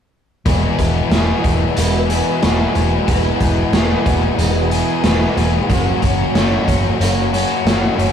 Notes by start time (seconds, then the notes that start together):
0.46 E1 E2 B2 E3 G#3 B3 E4 F#4 G#4 B4 G#5 E6, kick, closed hi-hat
0.78 E1, kick, closed hi-hat
1.10 E1 E3 G#3 B3 E4, snare, closed hi-hat
1.15 G#4
1.44 E1, kick, closed hi-hat
1.77 E1 E2 B2 E3 G#3 B3 E4, closed hi-hat
2.10 E3 G#3 B3 E4 G#4, closed hi-hat
2.43 E1 E3 G#3 B3 E4 G#4, snare, closed hi-hat
2.75 E1 E3 G#3 B3 G#4, closed hi-hat
3.08 E1 E2 B2 E3 G#3 B3 E4 G#4 D#6, kick, closed hi-hat
3.40 E1, kick, closed hi-hat
3.72 E1 E3 G#3 B3 E4, snare, closed hi-hat
3.76 G#4
4.06 E1, kick, closed hi-hat
4.38 E1 E2 B2 E3 G#3 B3 E4, closed hi-hat
4.71 E3 G#3 B3 E4 G#4, closed hi-hat
5.04 E1 E3 G#3 B3 E4 G#4, snare, closed hi-hat
5.21 snare
5.36 E1 E3 G#3 B3 G#4, closed hi-hat
5.69 F#1 F#2 C#3 F#3 A#3 C#4 F#4 C#5 A#5 C#6, kick, closed hi-hat
6.02 F#1, kick, closed hi-hat
6.34 F#1 F#3 A#3 C#4 F#4, snare, closed hi-hat
6.68 F#1, kick, closed hi-hat
7.00 F#1 F#2 C#3 F#3 A#3 C#4 F#4, closed hi-hat
7.33 F#3 A#3 C#4 F#4, closed hi-hat
7.65 F#1 F#3 A#3 C#4 F#4, snare, closed hi-hat
7.98 F#1 F#3 A#3 C#4 F#4, closed hi-hat